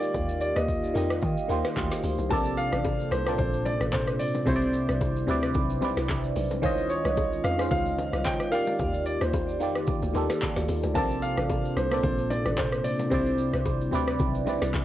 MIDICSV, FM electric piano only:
0, 0, Header, 1, 2, 480
1, 0, Start_track
1, 0, Key_signature, -2, "major"
1, 0, Tempo, 540541
1, 129, Time_signature, 4, 2, 24, 8
1, 13185, End_track
2, 0, Start_track
2, 0, Title_t, "FM electric piano"
2, 0, Program_c, 0, 5
2, 0, Note_on_c, 0, 51, 84
2, 0, Note_on_c, 0, 58, 75
2, 0, Note_on_c, 0, 65, 75
2, 0, Note_on_c, 0, 67, 75
2, 0, Note_on_c, 0, 74, 90
2, 69, Control_c, 0, 64, 127
2, 655, Note_off_c, 0, 51, 0
2, 659, Note_off_c, 0, 58, 0
2, 664, Note_off_c, 0, 65, 0
2, 668, Note_off_c, 0, 67, 0
2, 672, Note_off_c, 0, 74, 0
2, 836, Note_on_c, 0, 51, 82
2, 845, Note_on_c, 0, 58, 75
2, 853, Note_on_c, 0, 65, 72
2, 861, Note_on_c, 0, 67, 76
2, 870, Note_on_c, 0, 75, 87
2, 1236, Note_off_c, 0, 51, 0
2, 1240, Note_off_c, 0, 58, 0
2, 1244, Note_off_c, 0, 65, 0
2, 1249, Note_off_c, 0, 67, 0
2, 1253, Note_off_c, 0, 75, 0
2, 1317, Note_on_c, 0, 51, 84
2, 1325, Note_on_c, 0, 58, 73
2, 1333, Note_on_c, 0, 65, 79
2, 1342, Note_on_c, 0, 67, 75
2, 1351, Note_on_c, 0, 72, 93
2, 1908, Note_off_c, 0, 51, 0
2, 1912, Note_off_c, 0, 58, 0
2, 1917, Note_off_c, 0, 65, 0
2, 1921, Note_off_c, 0, 67, 0
2, 1925, Note_off_c, 0, 72, 0
2, 2036, Note_on_c, 0, 48, 94
2, 2045, Note_on_c, 0, 58, 87
2, 2053, Note_on_c, 0, 60, 87
2, 2060, Control_c, 0, 64, 0
2, 2062, Note_on_c, 0, 69, 91
2, 2070, Note_on_c, 0, 74, 104
2, 2213, Control_c, 0, 64, 127
2, 2719, Note_off_c, 0, 48, 0
2, 2723, Note_off_c, 0, 58, 0
2, 2728, Note_off_c, 0, 60, 0
2, 2732, Note_off_c, 0, 69, 0
2, 2736, Note_off_c, 0, 74, 0
2, 2889, Note_on_c, 0, 46, 77
2, 2897, Note_on_c, 0, 58, 73
2, 2905, Note_on_c, 0, 60, 71
2, 2914, Note_on_c, 0, 69, 69
2, 2923, Note_on_c, 0, 74, 82
2, 3658, Note_off_c, 0, 46, 0
2, 3662, Note_off_c, 0, 58, 0
2, 3666, Note_off_c, 0, 60, 0
2, 3671, Note_off_c, 0, 69, 0
2, 3675, Note_off_c, 0, 74, 0
2, 3957, Note_on_c, 0, 48, 100
2, 3965, Note_on_c, 0, 60, 88
2, 3974, Note_on_c, 0, 64, 89
2, 3978, Control_c, 0, 64, 0
2, 3982, Note_on_c, 0, 72, 88
2, 3990, Note_on_c, 0, 73, 83
2, 4043, Note_off_c, 0, 73, 0
2, 4048, Note_on_c, 0, 74, 108
2, 4116, Control_c, 0, 64, 127
2, 4548, Note_off_c, 0, 48, 0
2, 4552, Note_off_c, 0, 60, 0
2, 4557, Note_off_c, 0, 64, 0
2, 4561, Note_off_c, 0, 72, 0
2, 4594, Note_off_c, 0, 74, 0
2, 4677, Note_on_c, 0, 48, 91
2, 4685, Note_on_c, 0, 60, 87
2, 4694, Note_on_c, 0, 64, 92
2, 4702, Note_on_c, 0, 71, 89
2, 4710, Note_on_c, 0, 74, 108
2, 5076, Note_off_c, 0, 48, 0
2, 5080, Note_off_c, 0, 60, 0
2, 5085, Note_off_c, 0, 64, 0
2, 5089, Note_off_c, 0, 71, 0
2, 5093, Note_off_c, 0, 74, 0
2, 5157, Note_on_c, 0, 48, 85
2, 5166, Note_on_c, 0, 60, 76
2, 5174, Note_on_c, 0, 64, 74
2, 5183, Note_on_c, 0, 71, 75
2, 5191, Note_on_c, 0, 74, 94
2, 5749, Note_off_c, 0, 48, 0
2, 5753, Note_off_c, 0, 60, 0
2, 5757, Note_off_c, 0, 64, 0
2, 5761, Note_off_c, 0, 71, 0
2, 5765, Note_off_c, 0, 74, 0
2, 5877, Note_on_c, 0, 51, 103
2, 5885, Note_on_c, 0, 61, 88
2, 5894, Note_on_c, 0, 65, 94
2, 5899, Control_c, 0, 64, 0
2, 5902, Note_on_c, 0, 73, 86
2, 5911, Note_on_c, 0, 75, 109
2, 6030, Control_c, 0, 64, 127
2, 6560, Note_off_c, 0, 51, 0
2, 6564, Note_off_c, 0, 61, 0
2, 6568, Note_off_c, 0, 65, 0
2, 6572, Note_off_c, 0, 73, 0
2, 6576, Note_off_c, 0, 75, 0
2, 6729, Note_on_c, 0, 49, 83
2, 6738, Note_on_c, 0, 61, 73
2, 6747, Note_on_c, 0, 65, 73
2, 6755, Note_on_c, 0, 72, 72
2, 6764, Note_on_c, 0, 77, 88
2, 7498, Note_off_c, 0, 49, 0
2, 7502, Note_off_c, 0, 61, 0
2, 7507, Note_off_c, 0, 65, 0
2, 7511, Note_off_c, 0, 72, 0
2, 7515, Note_off_c, 0, 77, 0
2, 7556, Note_on_c, 0, 51, 79
2, 7565, Note_on_c, 0, 58, 75
2, 7573, Note_on_c, 0, 65, 76
2, 7581, Control_c, 0, 64, 0
2, 7582, Note_on_c, 0, 67, 77
2, 7591, Note_on_c, 0, 74, 93
2, 7710, Control_c, 0, 64, 127
2, 8335, Note_off_c, 0, 51, 0
2, 8339, Note_off_c, 0, 58, 0
2, 8344, Note_off_c, 0, 65, 0
2, 8348, Note_off_c, 0, 67, 0
2, 8352, Note_off_c, 0, 74, 0
2, 8517, Note_on_c, 0, 51, 81
2, 8526, Note_on_c, 0, 58, 74
2, 8534, Note_on_c, 0, 65, 72
2, 8542, Note_on_c, 0, 67, 76
2, 8551, Note_on_c, 0, 74, 84
2, 8916, Note_off_c, 0, 51, 0
2, 8921, Note_off_c, 0, 58, 0
2, 8925, Note_off_c, 0, 65, 0
2, 8929, Note_off_c, 0, 67, 0
2, 8933, Note_off_c, 0, 74, 0
2, 8997, Note_on_c, 0, 51, 82
2, 9005, Note_on_c, 0, 58, 77
2, 9014, Note_on_c, 0, 65, 74
2, 9022, Note_on_c, 0, 67, 76
2, 9030, Note_on_c, 0, 69, 88
2, 9588, Note_off_c, 0, 51, 0
2, 9592, Note_off_c, 0, 58, 0
2, 9597, Note_off_c, 0, 65, 0
2, 9601, Note_off_c, 0, 67, 0
2, 9605, Note_off_c, 0, 69, 0
2, 9717, Note_on_c, 0, 48, 95
2, 9725, Note_on_c, 0, 58, 89
2, 9734, Note_on_c, 0, 60, 89
2, 9740, Control_c, 0, 64, 0
2, 9742, Note_on_c, 0, 69, 90
2, 9750, Note_on_c, 0, 74, 101
2, 9909, Control_c, 0, 64, 127
2, 10400, Note_off_c, 0, 48, 0
2, 10404, Note_off_c, 0, 58, 0
2, 10408, Note_off_c, 0, 60, 0
2, 10412, Note_off_c, 0, 69, 0
2, 10416, Note_off_c, 0, 74, 0
2, 10568, Note_on_c, 0, 46, 78
2, 10577, Note_on_c, 0, 58, 73
2, 10585, Note_on_c, 0, 60, 73
2, 10594, Note_on_c, 0, 69, 74
2, 10602, Note_on_c, 0, 74, 84
2, 11338, Note_off_c, 0, 46, 0
2, 11342, Note_off_c, 0, 58, 0
2, 11346, Note_off_c, 0, 60, 0
2, 11350, Note_off_c, 0, 69, 0
2, 11354, Note_off_c, 0, 74, 0
2, 11636, Note_on_c, 0, 48, 101
2, 11645, Note_on_c, 0, 60, 91
2, 11654, Note_on_c, 0, 64, 89
2, 11658, Control_c, 0, 64, 0
2, 11662, Note_on_c, 0, 72, 85
2, 11670, Note_on_c, 0, 74, 105
2, 11836, Control_c, 0, 64, 127
2, 12228, Note_off_c, 0, 48, 0
2, 12233, Note_off_c, 0, 60, 0
2, 12237, Note_off_c, 0, 64, 0
2, 12241, Note_off_c, 0, 72, 0
2, 12245, Note_off_c, 0, 74, 0
2, 12357, Note_on_c, 0, 48, 92
2, 12366, Note_on_c, 0, 60, 88
2, 12374, Note_on_c, 0, 64, 89
2, 12383, Note_on_c, 0, 71, 90
2, 12391, Note_on_c, 0, 74, 105
2, 12757, Note_off_c, 0, 48, 0
2, 12761, Note_off_c, 0, 60, 0
2, 12765, Note_off_c, 0, 64, 0
2, 12769, Note_off_c, 0, 71, 0
2, 12773, Note_off_c, 0, 74, 0
2, 12837, Note_on_c, 0, 48, 81
2, 12846, Note_on_c, 0, 60, 77
2, 12854, Note_on_c, 0, 64, 75
2, 12862, Note_on_c, 0, 71, 78
2, 12871, Note_on_c, 0, 74, 88
2, 13185, Note_off_c, 0, 48, 0
2, 13185, Note_off_c, 0, 60, 0
2, 13185, Note_off_c, 0, 64, 0
2, 13185, Note_off_c, 0, 71, 0
2, 13185, Note_off_c, 0, 74, 0
2, 13185, End_track
0, 0, End_of_file